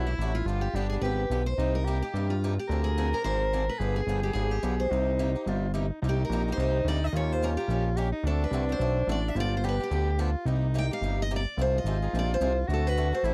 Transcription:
Already playing: B1 C3 F#3 A3 D4 E4 F#4
0.07 E4
0.18 A1 C3 F#3 A3 D4 F#4
0.35 F4
0.45 G1 D3 F3 B3 D4 F4
0.49 G4
0.61 G4
0.74 G1 D3 F3 B3 D4 G4
0.90 D4 G4 G#4
0.94 B3
1.01 G#1 D3 F3 B3 D4 G4 B4
1.05 G4
1.30 B1 D3 F3 B3 D4 G4
1.46 C5
1.58 C2 C3 G3 A#3 D#4 G4
1.75 A#4
1.85 C3 G3 A#3 D#4 G4
2.02 A#3 D#4 G4
2.14 G2 C3 G3 A#3 D#4 G4
2.30 F4
2.44 C3 G3 A#3 D#4 G4
2.59 G4
2.68 D2 D3 F3 C4 D4 G#4 A#4
2.84 G#4
2.98 D3 F3 C4 D4 G#4
3.13 C4 D4 G#4 A#4
3.24 G#1 D3 F3 C4 D4 G#4 C5
3.53 D3 F3 C4 D4 G#4
3.69 B4
3.79 G1 D3 F3 B3 D4 G4 G#4
3.96 G#4
4.07 G1 D3 F3 B3 D4 G4
4.23 B3 D4 G4
4.33 G#1 D3 F3 B3 D4 G4 G#4
4.51 G4
4.63 B1 D3 F3 B3 D4 G4
4.80 C5
4.91 C2 C3 G3 A#3 D#4 G4
5.19 C3 G3 A#3 D#4 G4
5.35 A#3 D#4 G4
5.46 G1 C3 G3 A#3 D#4 F4 G4
5.74 C3 G3 A#3 D#4 G4
6.02 C2 C3 G3 A#3 D#4 G4
6.09 G4
6.25 A#4
6.30 A#1 C3 G3 A#3 D#4 G4
6.48 A#3 D#4 G4
6.52 C5
6.57 C2 C3 G3 A#3 D#4 G4
6.84 D2 C3 G3 D5
6.88 A#3 D#4 G4
7.04 D#5
7.13 D#2 D#3 A#3 C#4 F4 G4 A#4 C#5
7.32 C5
7.42 D#3 A#3 C#4 G4 A#4
7.57 C#4 G4 A#4
7.68 A#1 D#3 A#3 C#4 G4 A#4
7.97 D#3 A#3 C#4 G4 A#4
8.12 D#4
8.23 D2 D3 A3 C4 D4 F#4 A4
8.44 B4
8.51 C2 D3 A3 C4 F#4 A4
8.69 C4 F#4 A4 C5
8.79 B1 D3 A3 C4 F#4 A4
9.07 A1 D3 A3 C4 F#4 A4
9.12 D5
9.28 E5
9.35 G1 D3 F3 B3 D4 F4 G4
9.40 D5
9.57 C5
9.64 D3 F3 B3 D4 G4
9.69 B4
9.80 B3 D4 G4
9.91 D2 D3 F3 B3 D4 G4
10.19 D3 F3 B3 D4 F4 G4
10.45 C2 C3 G3 A#3 D#4 G4
10.74 C3 G3 A#3 D#4 G4
10.79 G5
10.91 A#3 D#4 G4 F5
11.01 G1 C3 G3 A#3 D#4 G4
11.22 D#5
11.31 C3 G3 A#3 D#4 G4
11.36 D5
11.57 C2 C3 F3 C4 D#4 F4 G#4
11.61 C5
11.78 D#5
11.84 G#1 C3 F3 C4 D#4 G#4
12.02 C4 D#4 G#4
12.13 A#1 C3 F3 C4 D#4 G#4
12.19 D5
12.34 C5
12.41 C2 C3 F3 C4 D#4 G#4
12.68 D2 D3 A3 C4 F#4 A4
12.74 A4
12.87 B4
12.97 D3 A3 C4 F#4 A4
13.13 C4 F#4 A4 C5
13.23 A1 D3 A3 C4 E4 F#4 A4

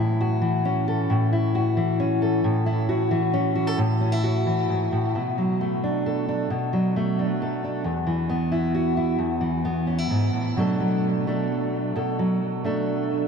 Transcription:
Already playing: A2 E3 E4
0.21 F#4
0.41 E3
0.65 C#4
0.88 A4
1.10 A2
1.33 E4
1.55 F#4
1.77 E3
2.00 C#4
2.22 A4
2.44 A2
2.66 E4
2.89 F#4
3.11 E3
3.33 C#4
3.55 F#4
3.67 A4
3.78 A2
4.01 C#4
4.12 E4
4.23 F#4
4.46 E3
4.69 G#2
4.92 A2
5.15 B2
5.38 F#3
5.61 A3
5.84 D4
6.06 A4
6.29 D4
6.50 B2
6.73 F#3
6.96 A3
7.19 D4
7.42 A4
7.64 D4
7.84 E2
8.07 E3
8.29 B3
8.52 E4
8.75 F#4
8.97 E4
9.19 E2
9.41 E3
9.65 B3
9.87 C#4
9.98 E4
10.10 G#2
10.33 A2
10.56 B2 F#3 A3 D4 A4
10.80 F#3
11.27 A3 D4 A4
11.96 B2 A4
12.19 F#3
12.64 A3 D4 A4

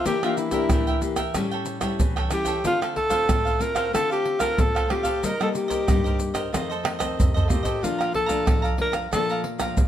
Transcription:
0.05 E3 A#3 D4 G4 A#4 E5 G5, pandeiro, maracas, surdo
0.23 A#3 D4 F4 G4 A#4 E5 G5, pandeiro, tamborim, maracas
0.37 E4, muted cavaquinho stroke, pandeiro, maracas
0.51 A#3 D4 G4 A#4 E5 G5, pandeiro, maracas, surdo
0.69 E3 D4 A#4 E5 G5, pandeiro, tamborim, maracas, surdo
0.87 A#4 E5 G5, pandeiro, maracas
1.01 A#3 D4 G4, muted cavaquinho stroke, pandeiro, maracas
1.16 A#4 E5 G5, pandeiro, tamborim, maracas, surdo
1.34 A2 G3 C#4 E4 G4 A4 C#5 G5, pandeiro, tamborim, maracas, surdo
1.51 A4 C#5 G5, pandeiro, maracas
1.66 pandeiro, maracas
1.81 G3 C#4 E4 A4 C#5 G5, pandeiro, tamborim, maracas, surdo
2.00 E3, pandeiro, maracas, surdo
2.16 A4 C#5 G5, pandeiro, tamborim, maracas
2.30 G3 C#4 E4 G4 A4 C#5 G5, pandeiro, tamborim, maracas
2.45 A4 C#5 G5, pandeiro, maracas, surdo
2.64 D3 A3 C4 D4 F4 A4 C5 F5, pandeiro, maracas, surdo
2.81 A4 C5 F5, pandeiro, tamborim, maracas
2.96 A4, muted cavaquinho stroke, pandeiro, surdo
3.10 A3 C4 F4 A4 C5 F5, pandeiro, maracas, surdo
3.29 A2 D4 A4 C5 F5, pandeiro, tamborim, maracas, surdo
3.45 A4 C5 F5, pandeiro, maracas
3.59 A3 C4 F4 A#4, muted cavaquinho stroke, pandeiro, maracas
3.75 A4 C5 F5, pandeiro, tamborim, maracas, surdo
3.93 D3 A3 C4 D4 F4 A4 C5 F5, pandeiro, tamborim, maracas, surdo
4.10 G4 A4 C5 F5, pandeiro, maracas
4.25 pandeiro
4.39 A3 C4 F4 A4 A#4 C5 F5, pandeiro, tamborim, maracas, surdo
4.58 A2 A4, pandeiro, maracas, surdo
4.75 A4 C5 F5, pandeiro, tamborim, maracas
4.89 A3 C4 D4 F4 G4 A4 C5 F5, pandeiro, tamborim
5.03 A4 C5 F5, pandeiro, maracas, surdo
5.22 C3 G3 A#3 D#4 A#4 C5 D#5, pandeiro, maracas, surdo
5.40 G3 A#3 D#4 A4 A#4 C5 D#5, pandeiro, tamborim, maracas
5.53 G4, muted cavaquinho stroke, pandeiro, maracas
5.68 A#4 C5 D#5, pandeiro, maracas, surdo
5.87 G2 G3 A#3 D#4 A#4 C5 D#5, pandeiro, tamborim, maracas, surdo
6.04 A#4 C5 D#5, pandeiro, maracas
6.18 muted cavaquinho stroke, pandeiro, maracas
6.34 A#4 C5 D#5, pandeiro, tamborim, maracas, surdo
6.53 F2 D#3 A3 C4 F4 A4 C5 D#5, pandeiro, tamborim, maracas, surdo
6.70 A4 C5 D#5, pandeiro, maracas
6.83 D#3 A3 C4, pandeiro, tamborim
6.99 D#3 A3 C4 A4 C5 D#5, pandeiro, tamborim, maracas, surdo
7.17 C3, surdo, pandeiro, maracas
7.34 A4 C5 D#5, surdo, pandeiro, maracas
7.44 F4 A4
7.48 D#3 A3 C4 G4 A4 C5 D#5, pandeiro, maracas, surdo
7.63 A4 C5 D#5, pandeiro, maracas, surdo
7.81 A#2 F3 A3 D4 F4 A4 D5 F5 A#5, pandeiro, maracas, surdo
7.98 D5 F5 A#5, pandeiro, tamborim, maracas
8.12 A4, muted cavaquinho stroke, pandeiro, surdo
8.26 F3 A3 D5 F5 A#5, pandeiro, maracas, surdo
8.30 D4
8.45 F2 A4 D5 F5 A#5, pandeiro, tamborim, maracas, surdo
8.62 D5 F5 A#5, pandeiro, maracas
8.77 F3 A3 D4 A#4, muted cavaquinho stroke, pandeiro
8.92 D5 F5 A#5, pandeiro, tamborim, maracas, surdo
9.11 A#2 F3 A3 D4 A4 D5 F5 A#5, pandeiro, tamborim, maracas, surdo
9.29 D5 F5 A#5, pandeiro, maracas
9.44 pandeiro
9.58 F3 A3 D4 D5 F5 A#5, pandeiro, tamborim, maracas, surdo
9.77 F2, pandeiro, maracas, surdo

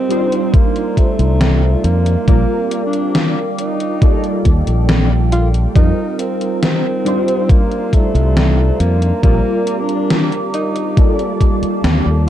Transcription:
Already playing: G3 C4 D#4 F4 A#4 F5
0.09 G3 D4 D#4 F4 C5 D5 A#5, closed hi-hat
0.32 closed hi-hat
0.54 A#3, kick, closed hi-hat
0.76 closed hi-hat
0.97 A3, kick, closed hi-hat
1.19 C2, closed hi-hat
1.41 snare, closed hi-hat
1.84 F2 A#3, closed hi-hat
2.06 closed hi-hat
2.26 A#1 G3 A#3 C4 F4 A#4 D5 G5 D6, kick, closed hi-hat
2.71 closed hi-hat
2.86 D4
2.93 closed hi-hat
3.15 snare, closed hi-hat
3.58 D#4, closed hi-hat
3.80 closed hi-hat
4.00 G3 A#3 F4 A4 D5, kick, closed hi-hat
4.24 closed hi-hat
4.45 D#2, kick, closed hi-hat
4.67 A#1, closed hi-hat
4.89 snare, closed hi-hat
5.32 F4, closed hi-hat
5.54 closed hi-hat
5.74 F2 G3 C4 D#4 F4 A#4, kick, closed hi-hat
6.19 C4, closed hi-hat
6.41 closed hi-hat
6.63 C4, snare, closed hi-hat
7.04 G3 D4 D#4 F4 C5 D5 F5 A#5, closed hi-hat
7.28 closed hi-hat
7.49 A#3, kick, closed hi-hat
7.72 closed hi-hat
7.93 A3, kick, closed hi-hat
8.15 C2, closed hi-hat
8.37 snare, closed hi-hat
8.80 F2 A#3, closed hi-hat
9.02 closed hi-hat
9.22 A#1 G3 A#3 C4 F4 G4 A#4 D5 F5 D6, kick, closed hi-hat
9.67 closed hi-hat
9.81 D4
9.89 closed hi-hat
10.10 snare, closed hi-hat
10.32 closed hi-hat
10.54 D#4, closed hi-hat
10.76 closed hi-hat
10.96 G3 A#3 F4 A4 D5 F5 A5, kick, closed hi-hat
11.19 closed hi-hat
11.41 kick, closed hi-hat
11.62 muted fingered electric bass stroke, closed hi-hat
11.84 D#2, snare, closed hi-hat
12.06 D#2

